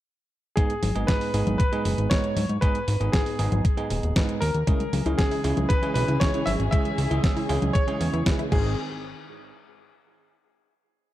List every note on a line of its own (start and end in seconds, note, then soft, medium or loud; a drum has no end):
0.56 0.73 G#2 medium
0.56 0.73 G#3 medium
0.56 0.73 B3 medium
0.56 0.73 D#4 medium
0.56 1.09 G#4 medium
0.56 0.73 G#4 loud
0.56 kick loud
0.56 closed hi-hat medium
0.70 closed hi-hat soft
0.83 0.92 G#1 medium
0.83 open hi-hat loud
0.83 high conga medium
0.95 1.05 G#1 medium
0.95 1.31 G#2 medium
0.95 1.31 G#3 medium
0.95 1.31 B3 medium
0.95 1.31 D#4 medium
0.95 1.31 G#4 loud
0.95 closed hi-hat soft
1.07 1.57 B4 medium
1.07 kick loud
1.07 snare loud
1.07 closed hi-hat medium
1.21 open hi-hat medium
1.34 1.43 G#1 medium
1.34 1.59 G#2 medium
1.34 1.59 G#3 medium
1.34 1.59 B3 medium
1.34 1.59 D#4 medium
1.34 1.59 G#4 loud
1.34 open hi-hat loud
1.47 1.56 G#1 medium
1.47 closed hi-hat soft
1.47 high conga medium
1.58 2.07 B4 loud
1.58 kick loud
1.58 closed hi-hat medium
1.72 2.08 G#2 loud
1.72 2.08 G#3 medium
1.72 2.08 B3 medium
1.72 2.08 D#4 medium
1.72 2.08 G#4 loud
1.72 closed hi-hat soft
1.85 1.94 F#1 medium
1.85 open hi-hat loud
1.98 2.07 G#1 medium
1.98 closed hi-hat soft
2.10 2.36 G#2 medium
2.10 2.36 G#3 medium
2.10 2.36 B3 medium
2.10 2.36 D#4 medium
2.10 2.36 B4 medium
2.10 2.63 C#5 medium
2.10 kick loud
2.10 snare loud
2.10 closed hi-hat loud
2.24 closed hi-hat soft
2.37 2.46 G#2 medium
2.37 open hi-hat loud
2.37 high conga medium
2.49 2.59 G#2 medium
2.49 closed hi-hat soft
2.61 2.78 G#2 medium
2.61 2.78 G#3 medium
2.61 2.78 B3 medium
2.61 2.78 D#4 medium
2.61 2.78 G#4 loud
2.61 3.15 B4 loud
2.61 kick loud
2.61 closed hi-hat medium
2.75 closed hi-hat soft
2.88 2.97 G#1 medium
2.88 open hi-hat loud
3.01 3.10 G#1 medium
3.01 3.36 G#2 medium
3.01 3.36 G#3 medium
3.01 3.36 B3 medium
3.01 3.36 D#4 medium
3.01 3.36 G#4 loud
3.01 closed hi-hat soft
3.12 4.45 G#4 medium
3.12 kick loud
3.12 snare loud
3.12 closed hi-hat medium
3.26 open hi-hat medium
3.39 3.48 G#1 medium
3.39 3.64 G#2 loud
3.39 3.64 G#3 medium
3.39 3.64 B3 medium
3.39 3.64 D#4 medium
3.39 3.64 G#4 loud
3.39 open hi-hat loud
3.52 3.61 G#1 medium
3.52 closed hi-hat soft
3.52 high conga medium
3.65 kick loud
3.65 closed hi-hat medium
3.77 4.13 G#2 loud
3.77 4.13 G#3 medium
3.77 4.13 B3 medium
3.77 4.13 D#4 medium
3.77 4.13 G#4 loud
3.77 closed hi-hat soft
3.90 4.00 D#1 medium
3.90 open hi-hat loud
4.03 4.12 D#1 medium
4.03 closed hi-hat soft
4.16 4.41 G#2 medium
4.16 4.41 G#3 medium
4.16 4.41 B3 medium
4.16 4.41 D#4 medium
4.16 4.41 B4 loud
4.16 kick loud
4.16 snare loud
4.16 closed hi-hat loud
4.29 closed hi-hat soft
4.41 4.51 D#2 loud
4.41 5.20 A#4 medium
4.41 open hi-hat loud
4.55 4.64 D#2 medium
4.55 closed hi-hat soft
4.67 4.83 C#3 loud
4.67 8.48 E3 medium
4.67 4.83 G#3 medium
4.67 4.79 G#3 loud
4.67 8.48 G#3 medium
4.67 4.83 C#4 medium
4.67 8.48 C#4 medium
4.67 4.83 E4 medium
4.67 4.83 G#4 loud
4.67 8.48 G#4 medium
4.67 kick loud
4.67 closed hi-hat medium
4.80 4.85 G#3 medium
4.80 closed hi-hat soft
4.93 5.02 C#2 medium
4.93 5.05 G#5 medium
4.93 open hi-hat loud
4.93 high conga medium
5.06 5.15 C#2 medium
5.06 5.41 C#3 medium
5.06 5.41 G#3 medium
5.06 5.41 C#4 medium
5.06 5.41 E4 medium
5.06 5.14 E4 loud
5.06 5.41 G#4 loud
5.06 closed hi-hat soft
5.18 5.71 G#4 medium
5.18 5.27 G#4 medium
5.18 kick loud
5.18 snare loud
5.18 closed hi-hat medium
5.31 5.39 E4 loud
5.31 open hi-hat medium
5.44 5.53 C#2 medium
5.44 5.69 C#3 loud
5.44 5.69 G#3 medium
5.44 5.69 C#4 medium
5.44 5.69 E4 medium
5.44 5.69 G#4 loud
5.44 5.56 C#5 medium
5.44 open hi-hat loud
5.57 5.66 C#2 medium
5.57 5.65 C#4 medium
5.57 closed hi-hat soft
5.57 high conga medium
5.69 5.82 G#3 loud
5.69 5.93 B4 loud
5.69 kick loud
5.69 closed hi-hat medium
5.83 6.18 C#3 loud
5.83 6.18 G#3 medium
5.83 5.88 G#3 medium
5.83 6.18 C#4 medium
5.83 6.18 E4 medium
5.83 6.18 G#4 loud
5.83 closed hi-hat soft
5.94 6.05 B1 loud
5.94 6.21 B4 loud
5.94 6.08 G#5 medium
5.94 open hi-hat loud
6.08 6.18 C#2 medium
6.08 6.16 E4 loud
6.08 closed hi-hat soft
6.20 6.46 C#3 medium
6.20 6.46 G#3 medium
6.20 6.46 C#4 medium
6.20 6.46 E4 medium
6.20 6.29 G#4 medium
6.20 6.46 B4 medium
6.20 6.47 C#5 loud
6.20 kick loud
6.20 snare loud
6.20 closed hi-hat medium
6.34 6.42 E4 loud
6.34 closed hi-hat soft
6.46 6.56 G#1 loud
6.46 6.59 C#5 medium
6.46 6.52 E5 loud
6.46 open hi-hat loud
6.46 high conga medium
6.60 6.69 G#1 medium
6.60 6.68 C#4 medium
6.60 closed hi-hat soft
6.71 6.88 C#3 medium
6.71 6.88 G#3 medium
6.71 6.84 G#3 loud
6.71 6.88 C#4 medium
6.71 6.88 E4 medium
6.71 6.88 G#4 loud
6.71 7.45 E5 loud
6.71 kick loud
6.71 closed hi-hat medium
6.85 6.90 G#3 medium
6.85 closed hi-hat soft
6.98 7.07 C#2 medium
6.98 7.10 G#5 medium
6.98 open hi-hat medium
7.11 7.20 C#2 medium
7.11 7.46 C#3 medium
7.11 7.46 G#3 medium
7.11 7.46 C#4 medium
7.11 7.19 E4 loud
7.11 7.46 E4 medium
7.11 7.46 G#4 loud
7.11 closed hi-hat soft
7.24 7.32 G#4 medium
7.24 kick loud
7.24 snare loud
7.24 closed hi-hat medium
7.37 7.45 E4 loud
7.37 open hi-hat medium
7.49 7.59 C#2 loud
7.49 7.74 C#3 loud
7.49 7.74 G#3 medium
7.49 7.74 C#4 medium
7.49 7.74 E4 medium
7.49 7.74 G#4 loud
7.49 7.61 C#5 medium
7.49 open hi-hat medium
7.62 7.71 C#2 medium
7.62 7.70 C#4 medium
7.62 closed hi-hat soft
7.62 high conga medium
7.73 7.87 G#3 loud
7.73 8.22 C#5 loud
7.73 kick loud
7.73 closed hi-hat medium
7.88 8.23 C#3 loud
7.88 8.23 G#3 medium
7.88 7.93 G#3 medium
7.88 8.23 C#4 medium
7.88 8.23 E4 medium
7.88 8.23 G#4 loud
7.88 closed hi-hat soft
8.01 8.10 E2 medium
8.01 8.13 G#5 medium
8.01 open hi-hat loud
8.13 8.23 E2 medium
8.13 8.21 E4 loud
8.13 closed hi-hat soft
8.26 8.51 C#3 medium
8.26 8.51 G#3 medium
8.26 8.51 C#4 medium
8.26 8.51 E4 medium
8.26 8.34 G#4 medium
8.26 8.51 B4 loud
8.26 kick loud
8.26 snare loud
8.26 closed hi-hat medium
8.39 8.47 E4 loud
8.39 closed hi-hat soft
8.52 8.76 G#1 loud
8.52 8.76 D#3 medium
8.52 8.71 G#3 medium
8.52 8.76 G#3 medium
8.52 8.71 C4 medium
8.52 8.76 C4 medium
8.52 8.71 D#4 medium
8.52 8.71 G#4 medium
8.52 8.76 G#4 medium
8.52 kick loud
8.52 crash medium